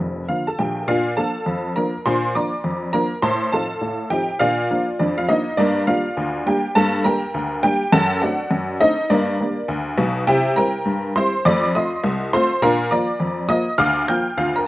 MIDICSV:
0, 0, Header, 1, 2, 480
1, 0, Start_track
1, 0, Key_signature, -2, "major"
1, 0, Tempo, 587084
1, 721, Time_signature, 2, 2, 24, 8
1, 11997, End_track
2, 0, Start_track
2, 0, Title_t, "Honky-tonk piano"
2, 0, Program_c, 0, 3
2, 0, Note_on_c, 0, 29, 51
2, 0, Note_on_c, 0, 41, 54
2, 0, Note_on_c, 0, 70, 74
2, 183, Note_off_c, 0, 29, 0
2, 186, Note_off_c, 0, 41, 0
2, 200, Note_off_c, 0, 70, 0
2, 231, Note_on_c, 0, 53, 35
2, 233, Note_on_c, 0, 77, 71
2, 234, Note_on_c, 0, 50, 33
2, 234, Note_on_c, 0, 58, 31
2, 243, Note_on_c, 0, 65, 48
2, 366, Note_off_c, 0, 53, 0
2, 368, Note_off_c, 0, 50, 0
2, 368, Note_off_c, 0, 58, 0
2, 371, Note_off_c, 0, 65, 0
2, 376, Note_off_c, 0, 77, 0
2, 386, Note_on_c, 0, 81, 68
2, 392, Note_on_c, 0, 69, 53
2, 480, Note_off_c, 0, 69, 0
2, 480, Note_on_c, 0, 46, 58
2, 480, Note_on_c, 0, 79, 76
2, 484, Note_off_c, 0, 81, 0
2, 485, Note_on_c, 0, 34, 62
2, 491, Note_on_c, 0, 67, 52
2, 673, Note_off_c, 0, 46, 0
2, 676, Note_off_c, 0, 34, 0
2, 709, Note_off_c, 0, 79, 0
2, 710, Note_off_c, 0, 67, 0
2, 717, Note_on_c, 0, 46, 87
2, 719, Note_on_c, 0, 77, 97
2, 724, Note_on_c, 0, 74, 66
2, 725, Note_on_c, 0, 65, 82
2, 735, Note_on_c, 0, 62, 54
2, 864, Note_off_c, 0, 62, 0
2, 913, Note_off_c, 0, 77, 0
2, 924, Note_off_c, 0, 46, 0
2, 947, Note_off_c, 0, 74, 0
2, 948, Note_off_c, 0, 65, 0
2, 953, Note_on_c, 0, 53, 39
2, 954, Note_on_c, 0, 81, 83
2, 957, Note_on_c, 0, 58, 47
2, 960, Note_on_c, 0, 62, 53
2, 960, Note_on_c, 0, 69, 71
2, 963, Note_on_c, 0, 77, 64
2, 1088, Note_off_c, 0, 53, 0
2, 1091, Note_off_c, 0, 58, 0
2, 1093, Note_off_c, 0, 62, 0
2, 1195, Note_on_c, 0, 41, 70
2, 1403, Note_off_c, 0, 41, 0
2, 1410, Note_off_c, 0, 69, 0
2, 1412, Note_off_c, 0, 77, 0
2, 1416, Note_off_c, 0, 81, 0
2, 1438, Note_on_c, 0, 82, 88
2, 1441, Note_on_c, 0, 53, 57
2, 1441, Note_on_c, 0, 58, 51
2, 1444, Note_on_c, 0, 62, 59
2, 1449, Note_on_c, 0, 70, 74
2, 1574, Note_off_c, 0, 53, 0
2, 1574, Note_off_c, 0, 58, 0
2, 1577, Note_off_c, 0, 62, 0
2, 1669, Note_off_c, 0, 82, 0
2, 1671, Note_off_c, 0, 70, 0
2, 1681, Note_on_c, 0, 84, 108
2, 1686, Note_on_c, 0, 46, 100
2, 1691, Note_on_c, 0, 72, 78
2, 1700, Note_on_c, 0, 62, 57
2, 1828, Note_off_c, 0, 62, 0
2, 1890, Note_off_c, 0, 46, 0
2, 1911, Note_off_c, 0, 84, 0
2, 1912, Note_off_c, 0, 72, 0
2, 1923, Note_on_c, 0, 53, 51
2, 1923, Note_on_c, 0, 58, 46
2, 1923, Note_on_c, 0, 86, 96
2, 1930, Note_on_c, 0, 74, 63
2, 1930, Note_on_c, 0, 82, 71
2, 1932, Note_on_c, 0, 62, 49
2, 2055, Note_off_c, 0, 53, 0
2, 2056, Note_off_c, 0, 58, 0
2, 2063, Note_off_c, 0, 62, 0
2, 2160, Note_on_c, 0, 41, 70
2, 2309, Note_off_c, 0, 86, 0
2, 2367, Note_off_c, 0, 41, 0
2, 2376, Note_off_c, 0, 74, 0
2, 2376, Note_off_c, 0, 82, 0
2, 2395, Note_on_c, 0, 82, 116
2, 2399, Note_on_c, 0, 58, 54
2, 2400, Note_on_c, 0, 53, 54
2, 2404, Note_on_c, 0, 62, 62
2, 2407, Note_on_c, 0, 70, 80
2, 2534, Note_off_c, 0, 53, 0
2, 2534, Note_off_c, 0, 58, 0
2, 2537, Note_off_c, 0, 62, 0
2, 2592, Note_off_c, 0, 82, 0
2, 2630, Note_off_c, 0, 70, 0
2, 2636, Note_on_c, 0, 84, 115
2, 2638, Note_on_c, 0, 45, 84
2, 2643, Note_on_c, 0, 81, 86
2, 2645, Note_on_c, 0, 72, 81
2, 2846, Note_off_c, 0, 45, 0
2, 2868, Note_off_c, 0, 81, 0
2, 2869, Note_off_c, 0, 72, 0
2, 2870, Note_off_c, 0, 84, 0
2, 2881, Note_on_c, 0, 53, 44
2, 2881, Note_on_c, 0, 81, 90
2, 2885, Note_on_c, 0, 60, 40
2, 2889, Note_on_c, 0, 63, 52
2, 2892, Note_on_c, 0, 69, 71
2, 2892, Note_on_c, 0, 77, 59
2, 3015, Note_off_c, 0, 53, 0
2, 3017, Note_off_c, 0, 60, 0
2, 3020, Note_off_c, 0, 63, 0
2, 3118, Note_on_c, 0, 45, 62
2, 3326, Note_off_c, 0, 45, 0
2, 3337, Note_off_c, 0, 69, 0
2, 3337, Note_off_c, 0, 77, 0
2, 3340, Note_off_c, 0, 81, 0
2, 3351, Note_on_c, 0, 53, 56
2, 3355, Note_on_c, 0, 79, 105
2, 3357, Note_on_c, 0, 60, 61
2, 3357, Note_on_c, 0, 63, 57
2, 3363, Note_on_c, 0, 67, 82
2, 3488, Note_off_c, 0, 53, 0
2, 3492, Note_off_c, 0, 60, 0
2, 3492, Note_off_c, 0, 63, 0
2, 3552, Note_off_c, 0, 79, 0
2, 3588, Note_off_c, 0, 67, 0
2, 3593, Note_on_c, 0, 77, 107
2, 3597, Note_on_c, 0, 46, 95
2, 3599, Note_on_c, 0, 74, 85
2, 3602, Note_on_c, 0, 65, 89
2, 3608, Note_on_c, 0, 62, 62
2, 3740, Note_off_c, 0, 62, 0
2, 3806, Note_off_c, 0, 46, 0
2, 3844, Note_on_c, 0, 53, 43
2, 3847, Note_on_c, 0, 58, 47
2, 3850, Note_on_c, 0, 62, 57
2, 3977, Note_off_c, 0, 53, 0
2, 3979, Note_off_c, 0, 58, 0
2, 3981, Note_off_c, 0, 62, 0
2, 3983, Note_off_c, 0, 77, 0
2, 4050, Note_off_c, 0, 74, 0
2, 4052, Note_off_c, 0, 65, 0
2, 4083, Note_on_c, 0, 74, 79
2, 4087, Note_on_c, 0, 41, 76
2, 4095, Note_on_c, 0, 62, 72
2, 4221, Note_off_c, 0, 62, 0
2, 4225, Note_off_c, 0, 74, 0
2, 4232, Note_on_c, 0, 77, 92
2, 4242, Note_on_c, 0, 65, 61
2, 4291, Note_off_c, 0, 41, 0
2, 4321, Note_on_c, 0, 53, 56
2, 4322, Note_on_c, 0, 75, 98
2, 4328, Note_on_c, 0, 58, 60
2, 4329, Note_off_c, 0, 65, 0
2, 4330, Note_off_c, 0, 77, 0
2, 4331, Note_on_c, 0, 63, 84
2, 4332, Note_on_c, 0, 62, 60
2, 4455, Note_off_c, 0, 53, 0
2, 4460, Note_off_c, 0, 58, 0
2, 4463, Note_off_c, 0, 62, 0
2, 4553, Note_off_c, 0, 63, 0
2, 4553, Note_off_c, 0, 75, 0
2, 4557, Note_on_c, 0, 74, 101
2, 4562, Note_on_c, 0, 43, 96
2, 4571, Note_on_c, 0, 62, 84
2, 4571, Note_on_c, 0, 70, 77
2, 4579, Note_on_c, 0, 58, 58
2, 4708, Note_off_c, 0, 58, 0
2, 4753, Note_off_c, 0, 74, 0
2, 4768, Note_off_c, 0, 43, 0
2, 4793, Note_off_c, 0, 62, 0
2, 4793, Note_off_c, 0, 70, 0
2, 4800, Note_on_c, 0, 77, 89
2, 4801, Note_on_c, 0, 55, 42
2, 4806, Note_on_c, 0, 58, 48
2, 4806, Note_on_c, 0, 62, 61
2, 4806, Note_on_c, 0, 65, 73
2, 4811, Note_on_c, 0, 74, 60
2, 4935, Note_off_c, 0, 55, 0
2, 4938, Note_off_c, 0, 58, 0
2, 4938, Note_off_c, 0, 62, 0
2, 5045, Note_on_c, 0, 38, 80
2, 5250, Note_off_c, 0, 38, 0
2, 5254, Note_off_c, 0, 65, 0
2, 5256, Note_off_c, 0, 74, 0
2, 5260, Note_off_c, 0, 77, 0
2, 5283, Note_on_c, 0, 55, 61
2, 5288, Note_on_c, 0, 79, 95
2, 5291, Note_on_c, 0, 58, 61
2, 5293, Note_on_c, 0, 67, 77
2, 5295, Note_on_c, 0, 62, 64
2, 5416, Note_off_c, 0, 55, 0
2, 5421, Note_off_c, 0, 58, 0
2, 5425, Note_off_c, 0, 62, 0
2, 5480, Note_off_c, 0, 79, 0
2, 5513, Note_off_c, 0, 67, 0
2, 5521, Note_on_c, 0, 81, 119
2, 5523, Note_on_c, 0, 43, 103
2, 5530, Note_on_c, 0, 69, 88
2, 5542, Note_on_c, 0, 58, 60
2, 5669, Note_off_c, 0, 58, 0
2, 5715, Note_off_c, 0, 81, 0
2, 5728, Note_off_c, 0, 43, 0
2, 5751, Note_off_c, 0, 69, 0
2, 5759, Note_on_c, 0, 82, 112
2, 5763, Note_on_c, 0, 55, 58
2, 5764, Note_on_c, 0, 58, 46
2, 5769, Note_on_c, 0, 62, 58
2, 5771, Note_on_c, 0, 70, 77
2, 5772, Note_on_c, 0, 79, 78
2, 5896, Note_off_c, 0, 55, 0
2, 5897, Note_off_c, 0, 58, 0
2, 5900, Note_off_c, 0, 62, 0
2, 6004, Note_on_c, 0, 38, 81
2, 6208, Note_off_c, 0, 38, 0
2, 6215, Note_off_c, 0, 70, 0
2, 6215, Note_off_c, 0, 79, 0
2, 6217, Note_off_c, 0, 82, 0
2, 6239, Note_on_c, 0, 79, 124
2, 6241, Note_on_c, 0, 58, 58
2, 6243, Note_on_c, 0, 55, 62
2, 6246, Note_on_c, 0, 62, 60
2, 6247, Note_on_c, 0, 67, 86
2, 6374, Note_off_c, 0, 58, 0
2, 6375, Note_off_c, 0, 55, 0
2, 6378, Note_off_c, 0, 62, 0
2, 6469, Note_off_c, 0, 67, 0
2, 6470, Note_off_c, 0, 79, 0
2, 6478, Note_on_c, 0, 81, 127
2, 6479, Note_on_c, 0, 42, 106
2, 6489, Note_on_c, 0, 69, 85
2, 6492, Note_on_c, 0, 78, 100
2, 6686, Note_off_c, 0, 42, 0
2, 6706, Note_off_c, 0, 78, 0
2, 6709, Note_off_c, 0, 81, 0
2, 6710, Note_off_c, 0, 69, 0
2, 6718, Note_on_c, 0, 78, 92
2, 6720, Note_on_c, 0, 60, 55
2, 6721, Note_on_c, 0, 57, 57
2, 6727, Note_on_c, 0, 62, 59
2, 6727, Note_on_c, 0, 74, 68
2, 6729, Note_on_c, 0, 66, 72
2, 6853, Note_off_c, 0, 60, 0
2, 6854, Note_off_c, 0, 57, 0
2, 6858, Note_off_c, 0, 62, 0
2, 6955, Note_on_c, 0, 42, 79
2, 7163, Note_off_c, 0, 42, 0
2, 7173, Note_off_c, 0, 74, 0
2, 7174, Note_off_c, 0, 66, 0
2, 7177, Note_off_c, 0, 78, 0
2, 7198, Note_on_c, 0, 57, 60
2, 7199, Note_on_c, 0, 75, 127
2, 7200, Note_on_c, 0, 60, 62
2, 7204, Note_on_c, 0, 62, 64
2, 7206, Note_on_c, 0, 63, 93
2, 7332, Note_off_c, 0, 57, 0
2, 7333, Note_off_c, 0, 60, 0
2, 7336, Note_off_c, 0, 62, 0
2, 7428, Note_off_c, 0, 63, 0
2, 7429, Note_off_c, 0, 75, 0
2, 7439, Note_on_c, 0, 74, 98
2, 7440, Note_on_c, 0, 43, 94
2, 7449, Note_on_c, 0, 70, 74
2, 7451, Note_on_c, 0, 62, 77
2, 7458, Note_on_c, 0, 58, 61
2, 7586, Note_off_c, 0, 58, 0
2, 7645, Note_off_c, 0, 43, 0
2, 7684, Note_off_c, 0, 62, 0
2, 7686, Note_on_c, 0, 55, 48
2, 7690, Note_on_c, 0, 58, 54
2, 7696, Note_on_c, 0, 62, 56
2, 7817, Note_off_c, 0, 55, 0
2, 7820, Note_off_c, 0, 58, 0
2, 7824, Note_off_c, 0, 62, 0
2, 7893, Note_off_c, 0, 70, 0
2, 7897, Note_off_c, 0, 74, 0
2, 7918, Note_on_c, 0, 38, 85
2, 8124, Note_off_c, 0, 38, 0
2, 8156, Note_on_c, 0, 35, 96
2, 8157, Note_on_c, 0, 47, 95
2, 8351, Note_off_c, 0, 35, 0
2, 8351, Note_off_c, 0, 47, 0
2, 8399, Note_on_c, 0, 79, 117
2, 8400, Note_on_c, 0, 48, 99
2, 8408, Note_on_c, 0, 76, 95
2, 8412, Note_on_c, 0, 67, 90
2, 8416, Note_on_c, 0, 64, 68
2, 8544, Note_off_c, 0, 64, 0
2, 8605, Note_off_c, 0, 48, 0
2, 8628, Note_off_c, 0, 76, 0
2, 8629, Note_off_c, 0, 79, 0
2, 8630, Note_off_c, 0, 67, 0
2, 8635, Note_on_c, 0, 82, 100
2, 8641, Note_on_c, 0, 55, 54
2, 8643, Note_on_c, 0, 60, 52
2, 8645, Note_on_c, 0, 64, 57
2, 8645, Note_on_c, 0, 70, 79
2, 8648, Note_on_c, 0, 79, 85
2, 8773, Note_off_c, 0, 55, 0
2, 8774, Note_off_c, 0, 60, 0
2, 8776, Note_off_c, 0, 64, 0
2, 8874, Note_on_c, 0, 43, 77
2, 9081, Note_off_c, 0, 43, 0
2, 9090, Note_off_c, 0, 70, 0
2, 9092, Note_off_c, 0, 79, 0
2, 9094, Note_off_c, 0, 82, 0
2, 9123, Note_on_c, 0, 55, 69
2, 9123, Note_on_c, 0, 84, 118
2, 9127, Note_on_c, 0, 60, 62
2, 9131, Note_on_c, 0, 64, 67
2, 9137, Note_on_c, 0, 72, 102
2, 9254, Note_off_c, 0, 55, 0
2, 9257, Note_off_c, 0, 60, 0
2, 9260, Note_off_c, 0, 64, 0
2, 9314, Note_off_c, 0, 84, 0
2, 9352, Note_off_c, 0, 72, 0
2, 9364, Note_on_c, 0, 41, 104
2, 9365, Note_on_c, 0, 86, 127
2, 9371, Note_on_c, 0, 74, 102
2, 9380, Note_on_c, 0, 57, 75
2, 9507, Note_off_c, 0, 57, 0
2, 9567, Note_off_c, 0, 41, 0
2, 9589, Note_off_c, 0, 74, 0
2, 9591, Note_off_c, 0, 86, 0
2, 9608, Note_on_c, 0, 87, 99
2, 9610, Note_on_c, 0, 57, 48
2, 9611, Note_on_c, 0, 60, 49
2, 9616, Note_on_c, 0, 65, 65
2, 9618, Note_on_c, 0, 75, 77
2, 9621, Note_on_c, 0, 84, 73
2, 9740, Note_off_c, 0, 57, 0
2, 9740, Note_off_c, 0, 60, 0
2, 9744, Note_off_c, 0, 65, 0
2, 9841, Note_on_c, 0, 36, 93
2, 9989, Note_off_c, 0, 87, 0
2, 10045, Note_off_c, 0, 36, 0
2, 10057, Note_off_c, 0, 75, 0
2, 10058, Note_off_c, 0, 84, 0
2, 10084, Note_on_c, 0, 84, 127
2, 10085, Note_on_c, 0, 57, 75
2, 10087, Note_on_c, 0, 60, 66
2, 10088, Note_on_c, 0, 65, 83
2, 10091, Note_on_c, 0, 72, 105
2, 10216, Note_off_c, 0, 57, 0
2, 10217, Note_off_c, 0, 60, 0
2, 10218, Note_off_c, 0, 65, 0
2, 10309, Note_off_c, 0, 72, 0
2, 10310, Note_off_c, 0, 84, 0
2, 10320, Note_on_c, 0, 46, 105
2, 10321, Note_on_c, 0, 82, 114
2, 10326, Note_on_c, 0, 70, 94
2, 10328, Note_on_c, 0, 77, 91
2, 10335, Note_on_c, 0, 62, 72
2, 10463, Note_off_c, 0, 62, 0
2, 10524, Note_off_c, 0, 46, 0
2, 10546, Note_off_c, 0, 70, 0
2, 10548, Note_off_c, 0, 77, 0
2, 10548, Note_off_c, 0, 82, 0
2, 10555, Note_on_c, 0, 86, 96
2, 10558, Note_on_c, 0, 53, 60
2, 10563, Note_on_c, 0, 58, 56
2, 10563, Note_on_c, 0, 82, 81
2, 10564, Note_on_c, 0, 74, 85
2, 10565, Note_on_c, 0, 65, 56
2, 10691, Note_off_c, 0, 53, 0
2, 10694, Note_off_c, 0, 58, 0
2, 10696, Note_off_c, 0, 65, 0
2, 10792, Note_on_c, 0, 41, 81
2, 10941, Note_off_c, 0, 86, 0
2, 10999, Note_off_c, 0, 41, 0
2, 11009, Note_off_c, 0, 74, 0
2, 11009, Note_off_c, 0, 82, 0
2, 11026, Note_on_c, 0, 53, 63
2, 11026, Note_on_c, 0, 87, 127
2, 11028, Note_on_c, 0, 58, 69
2, 11036, Note_on_c, 0, 75, 95
2, 11037, Note_on_c, 0, 65, 61
2, 11162, Note_off_c, 0, 53, 0
2, 11164, Note_off_c, 0, 58, 0
2, 11170, Note_off_c, 0, 65, 0
2, 11224, Note_off_c, 0, 87, 0
2, 11261, Note_off_c, 0, 75, 0
2, 11267, Note_on_c, 0, 38, 101
2, 11267, Note_on_c, 0, 89, 127
2, 11275, Note_on_c, 0, 77, 97
2, 11279, Note_on_c, 0, 86, 105
2, 11464, Note_off_c, 0, 89, 0
2, 11476, Note_off_c, 0, 38, 0
2, 11500, Note_off_c, 0, 77, 0
2, 11503, Note_off_c, 0, 86, 0
2, 11515, Note_on_c, 0, 91, 97
2, 11519, Note_on_c, 0, 53, 47
2, 11520, Note_on_c, 0, 58, 56
2, 11523, Note_on_c, 0, 65, 55
2, 11524, Note_on_c, 0, 79, 79
2, 11651, Note_off_c, 0, 53, 0
2, 11652, Note_off_c, 0, 58, 0
2, 11654, Note_off_c, 0, 65, 0
2, 11709, Note_off_c, 0, 91, 0
2, 11745, Note_off_c, 0, 79, 0
2, 11752, Note_on_c, 0, 38, 81
2, 11754, Note_on_c, 0, 77, 99
2, 11763, Note_on_c, 0, 65, 77
2, 11891, Note_off_c, 0, 65, 0
2, 11896, Note_off_c, 0, 77, 0
2, 11902, Note_on_c, 0, 82, 95
2, 11914, Note_on_c, 0, 70, 59
2, 11959, Note_off_c, 0, 38, 0
2, 11997, Note_off_c, 0, 70, 0
2, 11997, Note_off_c, 0, 82, 0
2, 11997, End_track
0, 0, End_of_file